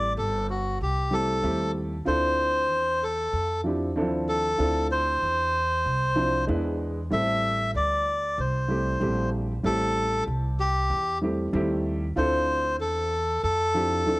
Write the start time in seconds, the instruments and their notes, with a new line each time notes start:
Already playing: upright bass A1, grand piano G3 A3 C4 E4 G4, melodica D5
0.17 upright bass G1, melodica A4
0.50 melodica F#4
0.80 upright bass C2, melodica G4
1.11 grand piano G3 A3 C4 E4 G4, melodica A4
1.42 upright bass D#2, grand piano G3 A3 C4 E4 G4
2.05 upright bass D2, grand piano C4 D4 E4 F4 A4, melodica C5
2.70 upright bass E2
3.03 melodica A4
3.33 upright bass F2
3.64 grand piano F3 C4 D4 E4 G4
3.96 upright bass D#2, grand piano E3 C4 D4 E4 A4
4.02 grand piano F3
4.29 melodica A4
4.58 upright bass D2, grand piano C4 D4 E4 F4 A4
4.92 melodica C5
5.22 upright bass E2
5.85 upright bass C2
6.15 grand piano F3 C4 D4 E4 C5
6.47 upright bass E2, grand piano G#3 B3 D4 E4 B4
7.11 upright bass A1, grand piano G3 A3 C4 E4 A4, melodica E5
7.74 upright bass D2, melodica D5
8.38 upright bass C2, melodica C5
8.68 grand piano G3 A3 C4 E4 G4
9.00 upright bass A#1, grand piano G3 A3 C4 E4 G4
9.63 upright bass A1, grand piano G3 A3 C4 E4 G4, melodica A4
10.27 upright bass C2
10.60 melodica G4
10.90 upright bass E2
11.22 grand piano G3 A3 C4 E4 G4
11.53 upright bass D#2, grand piano G3 A3 C4 E4 G4
12.16 upright bass D2, grand piano C4 D4 E4 F4 A4, melodica C5
12.80 upright bass E2, melodica A4
13.43 upright bass F2, melodica A4
13.74 grand piano F3 C4 D4 E4 G4
14.06 upright bass D#2, grand piano F3 C4 D4 E4 A4